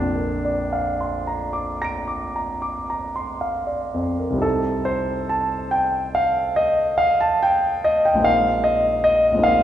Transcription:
grand piano
Already playing: A#1 F2 D4
0.15 A#4
0.45 D5
0.73 F5
1.01 C6
1.27 A#5
1.53 D6
1.82 A#5 A#6 D7
2.07 D6
2.36 A#5
2.62 D6
2.90 A#5
3.16 C6
3.41 F5
3.67 D5
3.94 F2
4.19 A#4
4.30 C2 G3
4.35 C4 D#4
4.41 G4 A4
4.85 C5
5.29 A5
5.71 G5
6.15 F5
6.56 D#5
6.98 F5
7.21 A5
7.43 G5
7.84 D#5
8.05 G5
8.13 A#1 G#3
8.19 C4 D#4
8.23 A#4 F5
8.64 D#5
9.04 D#5
9.32 A#1 G#3
9.37 C4 D#4
9.42 A#4 F5

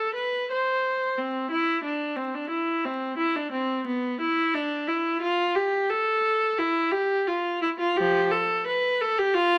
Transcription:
viola
Already playing: A4
0.15 B4
0.51 C5
1.18 C4
1.51 E4
1.84 D4
2.16 C4
2.34 D4
2.50 E4
2.85 C4
3.17 E4
3.35 D4
3.52 C4
3.87 B3
4.21 E4
4.54 D4
4.87 E4
5.21 F4
5.55 G4
5.90 A4
6.58 E4
6.92 G4
7.27 F4
7.62 E4
7.79 F4
7.96 F3 G4
8.31 A4
8.67 B4
9.01 A4
9.18 G4
9.34 F4

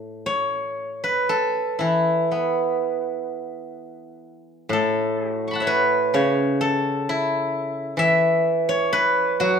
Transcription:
guzheng
Already playing: A2 A4
0.26 C#5
1.04 B4
1.29 A4
1.79 E3 E4
2.32 B3
4.69 A2 A4
5.34 F#4
5.48 B5 C#6
5.53 F#5 A5
5.60 C#5 E5
5.67 B4
6.14 C#3 C#5
6.61 A4
7.09 E4
7.97 E3 E5
8.69 C#5
8.93 B4
9.40 F#3 F#4

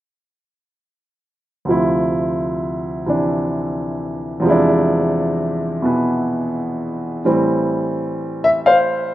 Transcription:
grand piano
1.65 D2 C3 F3
1.70 E4
3.06 C3 E3 D4
4.40 E2 C3
4.44 F3 G#3
4.49 D4 E4
5.82 B2 E3 B3
7.25 A2 E3 G3 C4
8.44 E5
8.66 C5 F5

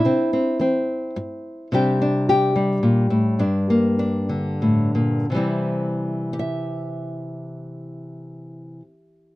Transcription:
nylon-string guitar
Already playing: E4
0.05 C3 C4
0.33 C4
0.59 E3 C4
1.16 G2
1.72 C3 G3 D4 G4
2.01 D4
2.29 G4
2.56 G3
2.83 A#2
3.10 A2
3.39 G2 D4
3.70 A#3
3.99 D4
4.29 D3
4.62 A2
4.95 A#2
5.30 C3 E3
5.34 G3 C4 E4
6.33 G4
6.39 E5

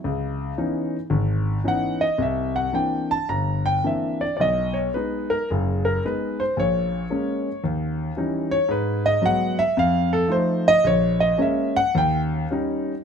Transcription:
grand piano
0.04 C#2
0.58 E3 B3 C#4 D#4
1.10 G#1
1.64 E3 B3 C#4 D#4 F#5
2.01 D#5
2.18 C2 E5
2.56 F#5
2.72 E3 A#3 C4 D4 G5
3.11 A5
3.29 G1 A#5
3.66 G5
3.84 E3 A#3 C4 D4 E5
4.21 D5
4.37 B1 D5
4.41 D#5
4.74 C#5
4.94 G#3 B3 D#4 B4
5.30 A#4
5.50 F#1 G#4
5.85 A#4
6.05 G#3 B3 D#4 B4
6.40 C5
6.57 A#1 A#2 C#5
7.10 G#3 A#3 C#4
7.64 D#2
8.17 E3 G3 C#4 D#4
8.51 C#5
8.69 G#2 B4
9.06 D#5
9.22 F#3 G#3 B3 F#5
9.59 E5
9.77 F2 F5
10.13 A4
10.28 F3 A3 D#4 C5
10.68 D#5
10.84 A#1 C#5
11.20 D#5
11.38 G#3 A#3 C#4
11.42 E5
11.76 F#5
11.95 D#2 G5
12.51 G3 C#4 D#4

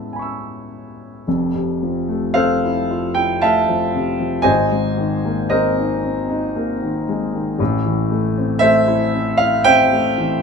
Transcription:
grand piano
Already playing: G#3 B3 C#4 E4
0.13 G#5 B5
0.19 C#6 E6
1.27 F1 F2
1.55 C3
1.83 F3
2.08 A3
2.34 C4 A4 C5 F5
2.64 E4
2.91 F4
3.15 E4 G5
3.42 A3 E5 F5 A5
3.69 F3
3.96 C3
4.20 F3
4.42 G#1 G#2 C5 D#5 G#5
4.72 G#3
4.98 D#3
5.25 A#3
5.50 C4 A#4 C5 D#5
5.78 D#4
6.03 C4
6.30 D#4
6.56 A#3
6.81 D#3
7.09 G#3
7.34 D#3
7.59 A1 A2
7.86 E3
8.11 A3
8.38 C4
8.59 A3 A4 C5 E5
8.87 E4
9.14 C4
9.38 E4 F5
9.64 C4 C5 E5 G5
9.92 A3
10.18 E3

